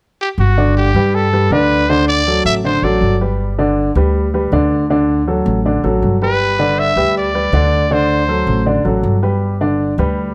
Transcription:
0.21 G4
0.38 G1 F#4
0.57 D3 D4 D5
0.77 G4
0.94 G2 G3 G4 B4
1.15 A4
1.33 G3 G4 B4
1.51 D2 D3 D4 B4 D5
1.89 D3 D4 C5 D5
2.08 D5
2.27 F#3 F#4 A4
2.45 A1 E5
2.64 D3 D4 C5 D5
2.82 A1 F#3 F#4 A4 D5
3.01 G1
3.21 G3 G4 B4
3.58 D3 D4 D5
3.95 D2 G3 G4 B4
4.34 G3 G4 B4
4.52 D2 D3 D4 D5
4.90 D3 D4 D5
5.27 F#3 F#4 A4
5.46 A1
5.65 D3 D4 D5
5.84 A1 F#3 F#4 A4
6.02 G1
6.22 G3 G4 B4
6.59 D3 D4 D5
6.79 E5
6.96 D2 G3 G4 B4
7.17 D5
7.34 G3 G4 B4
7.53 D2 D3 D4 D5
7.91 D3 D4 C5 D5
8.28 F#3 F#4 A4
8.47 A1
8.66 D3 D4 D5
8.85 A1 F#3 F#4 A4
9.03 G1
9.22 G3 G4 B4
9.61 D3 D4 D5
9.98 D2 G3 G4 B4

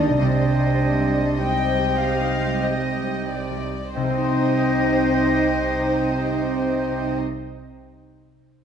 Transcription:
Already playing: D#2 D#3 G3 A#3 D4 D#4 G4 A#4 D5 D#5
0.20 C2 C3 G3 D4 C5 D5 D#5 G5
0.59 G3
1.00 C4
1.38 C4 D#4 C5 D#5 G5
1.79 G4
1.98 F5
2.21 D#4
2.62 G4 D#5
3.07 D#4
3.29 D5
3.51 G3
3.93 C2 C3 C4 D#4 C5 D#5 G5
4.03 G3
4.10 C4
4.17 D#4
4.24 C5

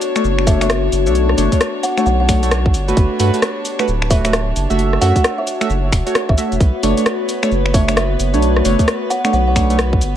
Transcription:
Already playing: B3 D4 F#4 C#5
0.01 open hi-hat, cabasa
0.16 A3 D4 C#5, finger snap, cabasa
0.24 F#1, cabasa
0.39 finger snap
0.47 A3 D4 C#5 E5, kick, open hi-hat, cabasa
0.61 A3 D4 C#5 E5, finger snap, closed hi-hat, cabasa
0.70 E5, cross-stick, closed hi-hat, cabasa
0.92 F#1, open hi-hat, cabasa
1.06 B1 A3 D4 C#5, closed hi-hat, cabasa
1.15 closed hi-hat, cabasa
1.29 cross-stick
1.38 F#1 A3 D4 C#5, open hi-hat, cabasa
1.52 A3 D4 C#5, kick, closed hi-hat, cabasa
1.61 cross-stick, closed hi-hat, cabasa
1.83 F#5, open hi-hat, cabasa
1.97 A3 D4 C#5 F#5, finger snap, cabasa
2.06 B1 F#5, cabasa
2.20 F#5
2.29 A3 D4 C#5, finger snap, kick, open hi-hat, cabasa
2.43 A3 D4 C#5, closed hi-hat, cabasa
2.51 cross-stick, closed hi-hat, cabasa
2.66 kick
2.74 G1 G4, open hi-hat, cabasa
2.88 A3 F#4 B4, closed hi-hat, cabasa
2.94 G1 A5, kick, closed hi-hat, cabasa
3.20 G2 A3 F#4 B4, open hi-hat, cabasa
3.34 A3 F#4 B4, closed hi-hat, cabasa
3.42 cross-stick, closed hi-hat, cabasa
3.65 open hi-hat, cabasa
3.79 A3 F#4 B4, finger snap, cabasa
3.88 D1, cabasa
4.02 finger snap
4.10 A3 F#4 B4 E5, kick, open hi-hat, cabasa
4.25 A3 F#4 B4 E5, finger snap, closed hi-hat, cabasa
4.33 E5, cross-stick, closed hi-hat, cabasa
4.56 F#1 F#4, open hi-hat, cabasa
4.70 F#1 A3 F#4 E5, closed hi-hat, cabasa
4.79 closed hi-hat, cabasa
4.93 cross-stick
5.01 F#2 A3 F#4 E5 F#5, open hi-hat, cabasa
5.15 A3 F#4 C#5 E5, kick, closed hi-hat, cabasa
5.24 cross-stick, closed hi-hat, cabasa
5.38 E5
5.47 F#5, open hi-hat, cabasa
5.61 A3 F#4 E5, finger snap, cabasa
5.70 F#1, cabasa
5.92 E1, finger snap, kick, open hi-hat, cabasa
6.06 A3 F#4 C#5, closed hi-hat, cabasa
6.15 cross-stick, closed hi-hat, cabasa
6.29 A1 E5, kick
6.38 A3 F#4 E5, open hi-hat, cabasa
6.52 E1, closed hi-hat, cabasa
6.60 B1 B3 B4, kick, closed hi-hat, cabasa
6.83 F#1 A3 D4 C#5, open hi-hat, cabasa
6.97 A3 D4 C#5, closed hi-hat, cabasa
7.06 cross-stick, closed hi-hat, cabasa
7.29 open hi-hat, cabasa
7.43 A3 D4 C#5, finger snap, cabasa
7.51 F#1, cabasa
7.66 finger snap
7.74 A3 D4 C#5 E5, kick, open hi-hat, cabasa
7.88 A3 D4 C#5 E5, finger snap, closed hi-hat, cabasa
7.96 E5, cross-stick, closed hi-hat, cabasa
8.19 F#1, open hi-hat, cabasa
8.34 B1 A3 D4 C#5, closed hi-hat, cabasa
8.42 closed hi-hat, cabasa
8.56 cross-stick
8.65 F#1 A3 D4 C#5, open hi-hat, cabasa
8.79 A3 D4 C#5, kick, closed hi-hat, cabasa
8.88 cross-stick, closed hi-hat, cabasa
9.10 F#5, open hi-hat, cabasa
9.24 A3 D4 C#5 F#5, finger snap, cabasa
9.33 B1 F#5, cabasa
9.47 F#5
9.56 A3 D4 C#5, finger snap, kick, open hi-hat, cabasa
9.70 A3 D4 C#5, closed hi-hat, cabasa
9.79 cross-stick, closed hi-hat, cabasa
9.93 kick
10.01 G1, open hi-hat, cabasa

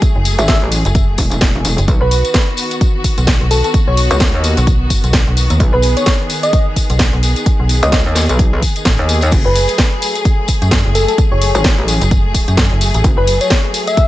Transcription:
Already playing: F#3 A3 G#4
0.02 kick, closed hi-hat, tambourine
0.15 F#1
0.25 open hi-hat, tambourine
0.39 G#1 E5, closed hi-hat, tambourine
0.48 E5, kick, snare, closed hi-hat, tambourine
0.62 A1
0.72 open hi-hat, tambourine
0.85 F#1, closed hi-hat, tambourine
0.95 kick, closed hi-hat, tambourine
1.18 E1, kick, open hi-hat, tambourine
1.31 E1, closed hi-hat, tambourine
1.41 kick, snare, closed hi-hat, tambourine
1.65 E1, open hi-hat, tambourine
1.78 F#1, closed hi-hat, tambourine
1.88 B1 D#3 B3 F#4, kick, closed hi-hat, tambourine
2.01 B1 B4
2.11 open hi-hat, tambourine
2.25 closed hi-hat, tambourine
2.34 kick, snare, closed hi-hat, tambourine
2.57 open hi-hat, tambourine
2.71 closed hi-hat, tambourine
2.81 kick, closed hi-hat, tambourine
3.04 kick, open hi-hat, tambourine
3.18 B1, closed hi-hat, tambourine
3.27 kick, snare, closed hi-hat, tambourine
3.41 B1
3.51 A4, open hi-hat, tambourine
3.64 A4, closed hi-hat, tambourine
3.74 kick, closed hi-hat, tambourine
3.87 B1 C#5
3.97 open hi-hat, tambourine
4.11 C#2, closed hi-hat, tambourine
4.20 kick, snare, closed hi-hat, tambourine
4.34 D#2
4.44 open hi-hat, tambourine
4.57 B1, closed hi-hat, tambourine
4.67 kick, closed hi-hat, tambourine
4.90 kick, open hi-hat, tambourine
5.04 B1, closed hi-hat, tambourine
5.13 kick, snare, closed hi-hat, tambourine
5.27 B1
5.37 open hi-hat, tambourine
5.50 D#2, closed hi-hat, tambourine
5.60 B1 G#4, kick, closed hi-hat, tambourine
5.73 B1 B4
5.82 open hi-hat, tambourine
5.97 C#5, closed hi-hat, tambourine
6.06 C#5, kick, snare, closed hi-hat, tambourine
6.30 open hi-hat, tambourine
6.43 D#5, closed hi-hat, tambourine
6.53 kick, closed hi-hat, tambourine
6.76 kick, open hi-hat, tambourine
6.90 B1, closed hi-hat, tambourine
6.99 kick, snare, closed hi-hat, tambourine
7.13 B1
7.23 open hi-hat, tambourine
7.36 closed hi-hat, tambourine
7.46 kick, closed hi-hat, tambourine
7.60 B1
7.69 open hi-hat, tambourine
7.83 C#2 D#5, closed hi-hat, tambourine
7.92 D#5, kick, snare, closed hi-hat, tambourine
8.06 D#2
8.15 snare, open hi-hat, tambourine
8.29 B1, closed hi-hat, tambourine
8.39 kick, closed hi-hat, tambourine
8.62 kick, open hi-hat, tambourine
8.76 closed hi-hat, tambourine
8.85 A1, kick, snare, closed hi-hat, tambourine
8.99 D#2
9.09 open hi-hat, tambourine
9.21 closed hi-hat, tambourine
9.31 F#1 F#3 A3, kick, closed hi-hat, crash, tambourine
9.46 F#1 B4
9.55 open hi-hat, tambourine
9.68 closed hi-hat, tambourine
9.78 kick, snare, closed hi-hat, tambourine
10.02 open hi-hat, tambourine
10.15 closed hi-hat, tambourine
10.25 kick, closed hi-hat, tambourine
10.48 kick, open hi-hat, tambourine
10.62 F#2, closed hi-hat, tambourine
10.71 kick, snare, closed hi-hat, tambourine
10.85 F#1
10.95 A4, open hi-hat, tambourine
11.08 A4, closed hi-hat, tambourine
11.18 kick, closed hi-hat, tambourine
11.32 F#1 C#5
11.42 open hi-hat, tambourine
11.55 G#1, closed hi-hat, tambourine
11.64 kick, snare, closed hi-hat, tambourine
11.78 A1
11.88 open hi-hat, tambourine
12.01 F#1, closed hi-hat, tambourine
12.11 kick, closed hi-hat, tambourine
12.34 kick, open hi-hat, tambourine
12.48 F#2, closed hi-hat, tambourine
12.57 kick, snare, closed hi-hat, tambourine
12.71 F#1
12.81 open hi-hat, tambourine
12.94 A1, closed hi-hat, tambourine
13.04 F#1, kick, closed hi-hat, tambourine
13.18 F#1 B4
13.27 open hi-hat, tambourine
13.41 C#5, closed hi-hat, tambourine
13.50 C#5, kick, snare, closed hi-hat
13.74 open hi-hat, tambourine
13.87 E5, closed hi-hat, tambourine
13.97 kick, closed hi-hat, tambourine

